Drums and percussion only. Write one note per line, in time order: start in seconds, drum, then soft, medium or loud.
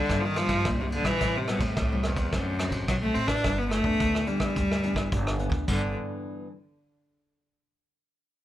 0.09 kick medium
0.09 cross-stick medium
0.09 ride soft
0.36 cross-stick medium
0.36 ride soft
0.49 kick medium
0.49 ride soft
0.65 kick medium
0.65 cross-stick medium
0.65 ride soft
0.92 ride soft
1.05 kick medium
1.05 cross-stick medium
1.05 ride soft
1.21 kick medium
1.21 cross-stick medium
1.21 ride soft
1.48 cross-stick medium
1.48 ride soft
1.60 kick medium
1.60 ride soft
1.76 kick medium
1.76 cross-stick medium
1.76 ride soft
2.03 cross-stick medium
2.03 ride soft
2.16 kick medium
2.16 ride soft
2.32 kick medium
2.32 cross-stick medium
2.32 ride soft
2.59 cross-stick medium
2.59 ride soft
2.72 kick medium
2.72 ride soft
2.88 kick medium
2.88 cross-stick medium
2.88 ride soft
3.15 ride soft
3.28 kick medium
3.28 cross-stick medium
3.28 ride soft
3.44 kick medium
3.44 cross-stick medium
3.44 closed hi-hat medium
3.59 closed hi-hat soft
3.71 cross-stick medium
3.71 closed hi-hat medium
3.84 kick medium
4.00 kick medium
4.00 closed hi-hat medium
4.15 cross-stick medium
4.27 closed hi-hat soft
4.40 kick medium
4.40 cross-stick medium
4.56 kick medium
4.56 closed hi-hat medium
4.71 cross-stick medium
4.71 closed hi-hat soft
4.83 closed hi-hat soft
4.96 kick medium
4.96 cross-stick medium
5.12 kick medium
5.12 closed hi-hat medium
5.27 cross-stick medium
5.27 closed hi-hat soft
5.39 closed hi-hat soft
5.52 kick medium
5.52 closed hi-hat soft
5.68 kick medium
5.68 crash medium